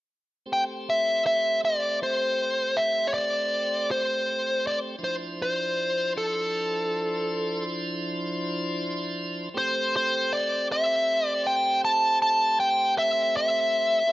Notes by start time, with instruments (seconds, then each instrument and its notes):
0.46 tonewheel organ A3 C4 G4 C5
0.53 lead electric guitar G5
0.90 lead electric guitar E5
1.26 lead electric guitar E5
1.65 lead electric guitar D5
2.03 lead electric guitar C5
2.77 lead electric guitar E5
3.07 lead electric guitar C#5
3.14 lead electric guitar D5
3.91 lead electric guitar C5
4.67 lead electric guitar D5
4.98 tonewheel organ F3 D4 E4 C5
5.04 lead electric guitar C5
5.42 lead electric guitar C5
6.18 lead electric guitar A4
9.54 tonewheel organ A3 C4 G4 C5, lead electric guitar C5
9.96 lead electric guitar C5
10.33 lead electric guitar D5
10.72 lead electric guitar E5
11.27 lead electric guitar D5
11.47 lead electric guitar G5
11.85 lead electric guitar A5
12.22 lead electric guitar A5
12.60 lead electric guitar G5
12.98 lead electric guitar E5
13.37 lead electric guitar E5
14.07 tonewheel organ C4 G4 A4 C5